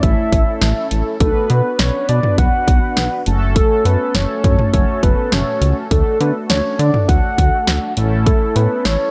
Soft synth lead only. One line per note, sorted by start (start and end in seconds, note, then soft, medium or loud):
0.03 0.87 E5 loud
1.21 1.52 A4 medium
1.50 1.79 B4 medium
1.79 2.07 C#5 medium
2.09 2.36 D5 loud
2.39 3.23 F#5 loud
3.56 3.83 A4 medium
3.86 4.17 B4 medium
4.15 4.73 C#5 medium
4.74 5.01 C#5 loud
5.03 5.34 B4 medium
5.33 5.77 C#5 medium
5.92 6.19 A4 medium
6.21 6.34 B4 medium
6.50 6.81 C#5 loud
6.79 7.08 D5 loud
7.08 7.93 F#5 loud
8.26 8.58 A4 medium
8.56 8.87 B4 medium
8.85 9.11 C#5 loud